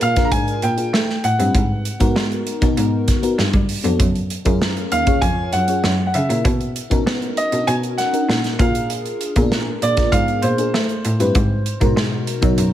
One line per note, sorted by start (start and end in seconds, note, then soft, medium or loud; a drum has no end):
0.00 0.24 A#2 medium
0.00 0.16 D4 medium
0.00 0.17 F4 medium
0.00 0.17 G#4 medium
0.00 0.17 A#4 loud
0.00 0.95 D5 medium
0.00 0.26 F5 medium
0.00 closed hi-hat medium
0.16 0.73 D4 medium
0.16 0.73 F4 medium
0.16 0.73 G#4 medium
0.16 0.74 A#4 medium
0.16 kick medium
0.16 snare soft
0.16 closed hi-hat medium
0.25 0.32 A#5 medium
0.32 0.54 G#2 medium
0.32 0.63 G#5 medium
0.32 kick medium
0.32 closed hi-hat medium
0.48 closed hi-hat soft
0.62 0.85 A#2 medium
0.62 1.26 G5 medium
0.62 closed hi-hat medium
0.77 0.93 D4 medium
0.77 0.93 F4 medium
0.77 0.93 G#4 medium
0.77 0.93 A#4 medium
0.77 closed hi-hat soft
0.94 1.05 A3 loud
0.94 snare medium
1.09 snare soft
1.24 1.35 A2 medium
1.24 2.12 F#5 medium
1.24 closed hi-hat medium
1.39 1.51 G2 medium
1.39 1.54 C4 medium
1.39 1.54 E4 medium
1.39 1.55 G4 medium
1.39 1.55 B4 medium
1.39 closed hi-hat soft
1.55 1.77 G#2 medium
1.55 kick loud
1.55 closed hi-hat medium
1.85 closed hi-hat medium
2.00 2.12 G#2 medium
2.00 2.57 B3 medium
2.00 2.57 D#4 medium
2.00 2.57 F#4 medium
2.00 2.57 A#4 loud
2.00 kick medium
2.00 closed hi-hat soft
2.16 2.38 G#3 loud
2.16 snare loud
2.32 closed hi-hat soft
2.47 closed hi-hat medium
2.61 2.73 B2 medium
2.61 3.18 B3 medium
2.61 3.18 D#4 medium
2.61 3.18 F#4 medium
2.61 3.19 A#4 medium
2.61 kick medium
2.61 closed hi-hat medium
2.77 3.00 G#2 medium
2.77 closed hi-hat medium
3.08 kick medium
3.08 snare soft
3.08 closed hi-hat medium
3.22 3.38 B3 medium
3.22 3.38 D#4 medium
3.22 3.38 F#4 medium
3.22 3.39 A#4 medium
3.22 closed hi-hat soft
3.39 3.50 G2 medium
3.39 snare medium
3.53 3.65 G3 medium
3.53 kick medium
3.53 closed hi-hat soft
3.69 open hi-hat medium
3.83 3.95 F2 medium
3.83 3.99 B3 medium
3.83 3.99 D4 medium
3.83 4.00 F#4 medium
3.83 4.00 A4 medium
3.83 closed hi-hat medium
4.00 4.22 F#2 medium
4.00 kick loud
4.00 closed hi-hat medium
4.15 closed hi-hat soft
4.30 closed hi-hat medium
4.45 4.57 F#2 medium
4.45 5.02 C#4 medium
4.45 5.02 F4 medium
4.45 5.02 G#4 medium
4.45 5.02 A#4 medium
4.45 kick medium
4.45 closed hi-hat soft
4.62 snare loud
4.77 closed hi-hat soft
4.92 5.14 D#2 medium
4.92 5.23 F5 medium
4.92 closed hi-hat medium
5.06 5.63 C#4 medium
5.06 5.63 F4 medium
5.06 5.64 G#4 medium
5.06 5.64 C#5 medium
5.06 kick medium
5.06 closed hi-hat medium
5.21 5.44 F2 medium
5.21 5.53 G#5 medium
5.21 kick medium
5.21 closed hi-hat medium
5.53 5.75 F#2 medium
5.53 6.05 F#5 medium
5.53 closed hi-hat medium
5.68 5.83 C#4 medium
5.68 5.83 F4 medium
5.68 5.84 G#4 medium
5.68 5.84 C#5 medium
5.68 closed hi-hat soft
5.84 5.95 F#2 medium
5.84 snare medium
6.07 6.14 F#5 medium
6.14 6.26 C#3 medium
6.14 6.42 E5 medium
6.14 closed hi-hat medium
6.29 6.41 A#2 medium
6.29 6.44 C#4 medium
6.29 6.45 E4 medium
6.29 6.45 G#4 medium
6.29 6.45 A#4 medium
6.29 closed hi-hat medium
6.45 6.67 B2 loud
6.45 kick loud
6.45 closed hi-hat medium
6.61 closed hi-hat soft
6.76 closed hi-hat medium
6.90 7.02 B2 medium
6.90 7.47 C#4 medium
6.90 7.47 D#4 medium
6.90 7.47 F#4 medium
6.90 7.48 A#4 medium
6.90 kick medium
6.90 closed hi-hat soft
7.06 7.28 B3 loud
7.06 snare loud
7.22 closed hi-hat soft
7.37 7.69 D#5 medium
7.37 closed hi-hat medium
7.52 7.63 B2 medium
7.52 8.09 C#4 medium
7.52 7.59 D4 medium
7.52 8.09 F#4 medium
7.52 8.09 A#4 medium
7.52 closed hi-hat soft
7.67 7.90 B2 medium
7.67 7.74 G#5 medium
7.67 closed hi-hat medium
7.83 closed hi-hat soft
7.98 8.61 F#5 medium
7.98 snare soft
7.98 closed hi-hat medium
8.13 8.59 C#4 medium
8.13 8.59 D#4 medium
8.13 8.59 F#4 medium
8.13 8.59 A#4 medium
8.13 closed hi-hat soft
8.29 8.51 A#2 medium
8.29 snare medium
8.44 snare soft
8.44 closed hi-hat soft
8.59 9.04 A#2 medium
8.59 9.30 D4 medium
8.59 9.30 F4 medium
8.59 9.30 G#4 medium
8.59 9.31 A#4 medium
8.59 8.88 F5 medium
8.59 kick loud
8.59 closed hi-hat medium
8.75 closed hi-hat soft
8.90 closed hi-hat medium
9.06 closed hi-hat soft
9.21 closed hi-hat medium
9.36 9.47 A#2 medium
9.36 9.42 B3 medium
9.36 9.93 F4 medium
9.36 9.93 G#4 medium
9.36 9.93 A#4 medium
9.36 kick medium
9.36 closed hi-hat soft
9.42 9.96 D4 medium
9.52 snare loud
9.82 10.04 A#2 medium
9.82 10.14 D5 medium
9.82 closed hi-hat medium
9.97 10.54 D4 medium
9.97 10.54 F4 medium
9.97 10.54 G#4 medium
9.97 10.54 A#4 medium
9.97 kick medium
9.97 snare soft
9.97 closed hi-hat medium
10.12 10.35 G#2 medium
10.12 10.44 F5 loud
10.12 kick medium
10.12 closed hi-hat medium
10.28 closed hi-hat soft
10.42 10.65 A#2 medium
10.42 12.73 C5 medium
10.42 closed hi-hat medium
10.58 10.74 D4 medium
10.58 10.74 F4 medium
10.58 10.74 G#4 medium
10.58 10.74 A#4 medium
10.58 closed hi-hat soft
10.74 10.85 A3 medium
10.74 snare medium
10.89 closed hi-hat soft
11.05 11.16 A2 medium
11.05 closed hi-hat medium
11.20 11.31 G2 medium
11.20 11.35 C4 medium
11.20 11.35 E4 medium
11.20 11.35 G4 medium
11.20 11.36 B4 medium
11.20 closed hi-hat medium
11.35 11.58 G#2 loud
11.35 kick loud
11.35 closed hi-hat medium
11.66 closed hi-hat medium
11.80 11.92 G#2 medium
11.80 12.37 B2 medium
11.80 12.37 D#4 medium
11.80 12.38 F#4 medium
11.80 12.38 A#4 medium
11.80 kick medium
11.80 closed hi-hat soft
11.96 12.19 G#3 loud
11.96 snare loud
12.27 closed hi-hat medium
12.41 12.73 B2 medium
12.41 12.54 F#3 medium
12.41 12.73 D#4 medium
12.41 12.73 F#4 medium
12.41 12.73 A#4 loud
12.41 kick medium
12.41 closed hi-hat soft
12.58 12.73 F#2 medium
12.58 closed hi-hat medium